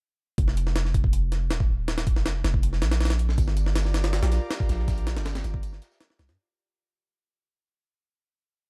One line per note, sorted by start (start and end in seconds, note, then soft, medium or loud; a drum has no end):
0.38 1.52 F1 loud
0.38 kick loud
0.38 closed hi-hat medium
0.48 snare soft
0.57 closed hi-hat medium
0.67 snare soft
0.76 snare loud
0.76 closed hi-hat medium
0.85 snare soft
0.94 kick medium
0.94 closed hi-hat medium
1.04 kick loud
1.13 closed hi-hat medium
1.32 snare soft
1.32 closed hi-hat medium
1.51 2.18 D#1 medium
1.51 snare loud
1.51 closed hi-hat medium
1.60 kick loud
1.88 snare loud
1.88 closed hi-hat medium
1.98 snare loud
1.98 closed hi-hat medium
2.07 kick loud
2.07 closed hi-hat medium
2.16 2.43 F1 loud
2.16 snare medium
2.26 snare loud
2.26 closed hi-hat medium
2.44 2.83 F1 medium
2.44 snare loud
2.44 closed hi-hat medium
2.54 kick medium
2.63 closed hi-hat medium
2.73 snare soft
2.82 3.37 A#1 medium
2.82 snare loud
2.82 closed hi-hat medium
2.91 snare loud
2.91 closed hi-hat medium
3.01 snare medium
3.01 closed hi-hat medium
3.05 snare medium
3.05 closed hi-hat medium
3.10 snare loud
3.10 closed hi-hat medium
3.19 closed hi-hat medium
3.29 snare soft
3.38 4.21 G1 loud
3.38 6.35 F4 medium
3.38 6.35 G4 medium
3.38 6.35 A#4 medium
3.38 6.35 D5 medium
3.38 kick loud
3.38 closed hi-hat medium
3.38 tambourine medium
3.48 snare soft
3.57 closed hi-hat medium
3.57 tambourine medium
3.66 snare soft
3.75 snare loud
3.75 closed hi-hat medium
3.75 tambourine medium
3.85 snare soft
3.94 snare loud
3.94 closed hi-hat medium
3.94 tambourine medium
4.04 snare loud
4.04 closed hi-hat medium
4.13 snare loud
4.13 closed hi-hat medium
4.13 tambourine medium
4.23 4.39 A#1 medium
4.23 snare loud
4.23 closed hi-hat medium
4.32 snare soft
4.32 closed hi-hat medium
4.32 tambourine medium
4.51 snare loud
4.51 closed hi-hat medium
4.51 tambourine medium
4.60 kick loud
4.69 5.18 A#1 medium
4.69 snare medium
4.69 closed hi-hat medium
4.69 tambourine medium
4.79 snare medium
4.88 kick loud
4.88 snare loud
4.88 closed hi-hat medium
4.88 tambourine medium
4.98 closed hi-hat soft
5.07 snare loud
5.07 closed hi-hat medium
5.07 tambourine medium
5.16 5.43 G1 medium
5.16 snare loud
5.16 snare soft
5.16 closed hi-hat medium
5.25 snare loud
5.25 closed hi-hat medium
5.25 tambourine medium
5.35 snare loud
5.35 closed hi-hat medium
5.44 5.80 G1 medium
5.44 snare soft
5.44 closed hi-hat medium
5.44 tambourine medium
5.54 kick loud
5.63 closed hi-hat medium
5.63 tambourine medium
5.73 snare soft
5.82 snare loud
5.82 closed hi-hat medium
5.82 tambourine medium
5.92 snare loud
5.92 tambourine medium
6.00 snare loud
6.00 closed hi-hat medium
6.00 tambourine medium
6.10 snare medium
6.19 6.30 C2 medium
6.19 snare loud
6.19 closed hi-hat medium
6.19 tambourine medium
6.28 6.37 G2 medium
6.28 snare loud
6.28 closed hi-hat medium
6.28 tambourine medium